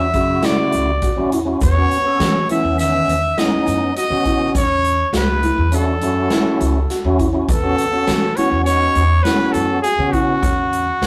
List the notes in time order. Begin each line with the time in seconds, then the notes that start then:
Already playing: E2 D4 E5
0.14 F#2 C#3 E4 F#4, kick, closed hi-hat
0.42 E4 D5, snare, closed hi-hat
0.72 C#2, closed hi-hat, shaker
1.02 F#4, kick, closed hi-hat
1.16 E2 C#4 E4 F#4
1.32 E4, closed hi-hat
1.45 C#4 E4 F#4
1.61 E2 B3 C#5, kick, closed hi-hat, shaker
1.75 B3 C#4 F#4
1.91 closed hi-hat, shaker
2.05 B3 C#4 A4
2.20 E3 F#4, snare, closed hi-hat, shaker
2.49 E3 B3 C#4 E4 E5, closed hi-hat
2.64 E2
2.79 D#3 E5, snare, closed hi-hat, shaker
3.08 E2, closed hi-hat, shaker
3.37 B3 C#4 D#4 E4 D#5, snare, closed hi-hat
3.67 F#2, closed hi-hat, shaker
3.96 F#4 D#5, closed hi-hat
4.10 C#3 B3 C#4 F#4
4.25 E4, kick, closed hi-hat
4.55 E2 C#4 C#5, kick, closed hi-hat, shaker
4.84 closed hi-hat, shaker
5.13 C#2 F#4 B4, snare, closed hi-hat, shaker
5.43 E4, closed hi-hat
5.58 E2
5.71 C#4 D4 E4 F#4 A4, closed hi-hat, shaker
6.01 F#2 C#4 E4 F#4, closed hi-hat, shaker
6.30 E4, snare, closed hi-hat
6.60 C#2, closed hi-hat, shaker
6.90 F#4, snare, closed hi-hat
7.04 E2 C#4 E4 F#4
7.19 E4, kick, closed hi-hat
7.33 C#4 E4 F#4
7.48 E2 B3 A4, kick, closed hi-hat, shaker
7.62 B3 C#4 F#4
7.78 closed hi-hat, shaker
7.91 B3 C#4 F#4
8.07 E3 F#4, snare, closed hi-hat, shaker
8.36 B3 C#4 E4 F#4 C#5, closed hi-hat
8.51 E2
8.64 D#4 C#5, closed hi-hat, shaker
8.95 E2, closed hi-hat, shaker
9.23 B3 C#4 E4 F#4 B4, snare, closed hi-hat
9.52 F#2 A4, closed hi-hat, shaker
9.82 F#4 G#4, closed hi-hat
9.98 C#3 B3 C#4 F#4
10.12 E4 F#4, kick, closed hi-hat
10.43 E2 C#4, kick, closed hi-hat, shaker
10.73 closed hi-hat, shaker
11.02 C#2 F#4, snare, closed hi-hat